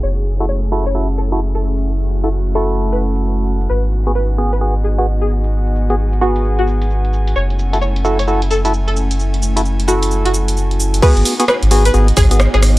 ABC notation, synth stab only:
X:1
M:4/4
L:1/16
Q:"Swing 16ths" 1/4=131
K:F#dor
V:1 name="Synth stab"
z3 [EFA] z2 [EFA] z [EFA] z2 [EFA] z4 | z3 [EFA] z2 [EFA]8- [EFA]2 | z3 [B,FG] z2 [B,FG] z [B,FG] z2 [B,FG] z4 | z3 [B,FG] z2 [B,FG]8- [B,FG]2 |
z3 [EFA] z2 [EFA] z [EFA] z2 [EFA] z4 | z3 [EFA] z2 [EFA]8- [EFA]2 | [B,FG]3 [B,FG] z2 [B,FG] z [B,FG] z2 [B,FG] z4 |]